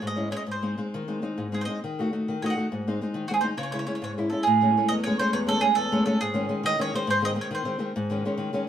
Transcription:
0.02 0.31 G#2 medium
0.07 0.28 D#5 medium
0.16 0.30 G#3 soft
0.16 0.30 C#4 soft
0.16 0.30 E4 soft
0.31 0.43 G#3 soft
0.31 0.43 C#4 soft
0.31 0.43 E4 soft
0.31 0.36 C#5 medium
0.37 0.42 D#5 medium
0.47 0.76 G#2 soft
0.51 0.80 C5 medium
0.62 0.76 G#3 soft
0.62 0.77 C4 soft
0.62 0.77 D#4 soft
0.78 1.01 G#3 soft
0.78 1.02 C4 soft
0.78 1.02 D#4 soft
0.94 1.22 D#3 medium
1.08 1.21 G#3 soft
1.08 1.21 C4 soft
1.08 1.22 D#4 soft
1.22 1.46 G#3 soft
1.22 1.46 C4 soft
1.22 1.46 D#4 soft
1.38 1.66 G#2 medium
1.52 1.67 G#3 soft
1.52 1.67 C4 soft
1.52 1.69 D#4 soft
1.52 1.60 G#4 soft
1.61 1.65 C5 medium
1.65 1.79 G#3 soft
1.65 1.79 C4 soft
1.65 1.79 D#5 medium
1.70 1.80 D#4 soft
1.84 2.11 D#3 medium
1.99 2.11 A3 soft
1.99 2.12 D#4 soft
1.99 2.12 F#4 soft
2.13 2.35 A3 soft
2.13 2.36 D#4 soft
2.13 2.36 F#4 soft
2.28 2.55 D#3 soft
2.42 2.56 A3 soft
2.42 2.56 D#4 soft
2.42 2.57 F#4 soft
2.42 2.45 C#5 medium
2.42 2.53 D#5 medium
2.50 2.65 F#5 medium
2.57 2.67 A3 soft
2.57 2.67 D#4 soft
2.57 2.68 F#4 soft
2.72 2.99 G#2 medium
2.88 3.01 G#3 soft
2.88 3.00 C4 soft
2.88 3.02 D#4 soft
3.01 3.24 G#3 soft
3.01 3.24 C4 soft
3.01 3.25 D#4 soft
3.14 3.42 D#3 soft
3.28 3.42 G#3 soft
3.28 3.42 C4 soft
3.28 3.42 D#4 soft
3.28 3.33 F#4 medium
3.34 3.37 G#4 medium
3.41 3.54 G#3 soft
3.41 3.54 C4 soft
3.41 3.54 D#4 soft
3.41 3.46 C5 medium
3.57 3.86 C#3 medium
3.57 3.62 C#5 medium
3.63 3.71 C#5 medium
3.72 3.86 G#3 soft
3.72 3.86 C#4 soft
3.72 3.86 E4 soft
3.72 3.78 C#5 medium
3.79 3.85 C#5 medium
3.87 4.10 G#3 soft
3.87 4.11 C#4 soft
3.87 4.11 E4 soft
3.87 3.94 C#5 medium
3.95 4.02 C#5 soft
4.02 4.30 G#2 medium
4.02 4.10 C#5 medium
4.18 4.30 G#3 soft
4.18 4.31 C#4 soft
4.18 4.31 E4 soft
4.30 4.42 G#3 soft
4.30 4.43 C#4 soft
4.30 4.43 E4 soft
4.30 4.43 A4 soft
4.43 4.75 A2 medium
4.43 4.90 G#4 medium
4.61 4.76 G#3 soft
4.61 4.76 A3 soft
4.61 4.76 C#4 medium
4.77 5.00 G#3 soft
4.77 5.00 A3 soft
4.77 5.00 C#4 soft
4.88 5.19 E2 medium
4.88 4.93 D#5 medium
5.04 5.18 G#3 soft
5.04 5.19 A3 soft
5.04 5.19 C#4 soft
5.04 5.19 C#5 medium
5.19 5.42 G#3 soft
5.19 5.43 A3 soft
5.19 5.43 C#4 medium
5.19 5.32 C5 medium
5.33 5.61 E2 medium
5.33 5.38 C#5 medium
5.47 5.60 G#3 soft
5.47 5.61 A3 soft
5.47 5.61 C#4 medium
5.47 5.62 A4 medium
5.61 5.85 G#3 soft
5.61 5.86 A3 soft
5.61 5.85 C#4 soft
5.61 5.75 G#4 medium
5.75 6.05 E2 medium
5.75 6.03 A4 medium
5.92 6.04 G#3 medium
5.92 6.05 A3 medium
5.92 6.06 C#4 medium
6.06 6.17 G#3 soft
6.06 6.17 A3 soft
6.06 6.18 C#4 soft
6.06 6.19 A4 medium
6.21 6.49 G#2 medium
6.21 6.65 G#4 medium
6.34 6.48 D#3 medium
6.34 6.48 G#3 soft
6.34 6.47 C#4 soft
6.49 6.62 D#3 soft
6.49 6.73 G#3 soft
6.49 6.72 C#4 soft
6.63 6.77 D#3 medium
6.63 6.79 D#5 medium
6.79 6.93 D#3 medium
6.79 6.93 G#3 soft
6.79 6.94 C#4 medium
6.79 6.93 C#5 medium
6.94 7.05 D#3 soft
6.94 7.05 G#3 soft
6.94 7.06 C#4 soft
6.94 7.08 C5 medium
7.07 7.36 G#2 medium
7.07 7.24 C5 medium
7.22 7.33 D#3 soft
7.22 7.34 G#3 soft
7.22 7.35 C4 medium
7.22 7.30 D#5 medium
7.35 7.50 D#3 soft
7.35 7.59 G#3 soft
7.35 7.60 C4 medium
7.41 7.46 C#5 medium
7.51 7.64 D#3 medium
7.51 7.84 C5 medium
7.65 7.77 D#3 medium
7.65 7.78 G#3 soft
7.65 7.78 C4 medium
7.79 7.91 D#3 soft
7.79 7.91 G#3 soft
7.79 7.92 C4 soft
7.96 8.24 G#2 medium
8.10 8.25 D#3 soft
8.10 8.24 G#3 soft
8.10 8.25 C#4 soft
8.25 8.36 D#3 soft
8.25 8.49 G#3 soft
8.25 8.49 C#4 soft
8.38 8.52 D#3 medium
8.53 8.66 D#3 soft
8.53 8.67 G#3 soft
8.53 8.67 C#4 medium

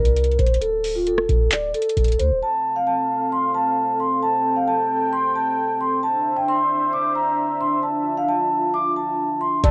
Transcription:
0.00 0.37 C2 loud
0.00 0.36 A#4 medium
0.05 closed hi-hat medium
0.16 closed hi-hat medium
0.24 closed hi-hat medium
0.31 closed hi-hat medium
0.39 1.26 D1 loud
0.39 0.56 C5 medium
0.39 kick medium
0.39 closed hi-hat medium
0.46 closed hi-hat medium
0.54 closed hi-hat medium
0.61 0.93 A4 medium
0.61 closed hi-hat medium
0.84 open hi-hat medium
0.96 1.04 F4 medium
1.07 1.49 A4 medium
1.07 closed hi-hat medium
1.18 cross-stick loud
1.29 1.72 D1 loud
1.29 kick loud
1.29 closed hi-hat medium
1.52 1.69 D5 medium
1.52 clap loud
1.52 closed hi-hat medium
1.74 2.17 A4 medium
1.74 closed hi-hat medium
1.82 closed hi-hat medium
1.89 closed hi-hat medium
1.97 2.21 D1 loud
1.97 kick medium
1.97 closed hi-hat medium
2.04 closed hi-hat medium
2.08 closed hi-hat soft
2.12 closed hi-hat medium
2.19 2.32 D2 loud
2.19 2.37 C5 medium
2.19 closed hi-hat medium
2.31 2.41 D1 loud
2.42 5.99 C4 medium
2.42 5.99 A4 medium
2.42 4.21 F5 medium
2.42 2.74 A5 medium
2.76 2.85 F5 medium
2.87 3.29 A5 medium
3.32 3.50 C6 medium
3.55 3.97 A5 medium
4.00 4.17 C6 medium
4.22 6.01 G5 medium
4.22 4.54 A5 loud
4.56 4.65 F5 medium
4.68 5.10 A5 loud
5.13 5.30 C6 medium
5.36 5.78 A5 medium
5.81 5.98 C6 medium
6.03 9.60 D4 medium
6.03 7.82 C5 medium
6.03 9.60 E5 medium
6.03 6.35 A5 medium
6.36 6.45 G5 medium
6.48 6.91 C6 loud
6.93 7.11 D6 loud
7.15 7.58 A#5 medium
7.61 7.78 C6 medium
7.83 9.62 F4 medium
7.83 8.15 A5 medium
8.17 8.26 F5 medium
8.29 8.71 A5 medium
8.74 8.91 D6 loud
8.96 9.39 A5 medium
9.41 9.58 C6 medium
9.64 9.71 F1 loud
9.64 9.71 C3 medium
9.64 9.71 C4 medium
9.64 9.71 A4 medium
9.64 9.71 D5 loud
9.64 9.71 F5 medium
9.64 9.71 A5 medium
9.64 kick loud
9.64 closed hi-hat medium

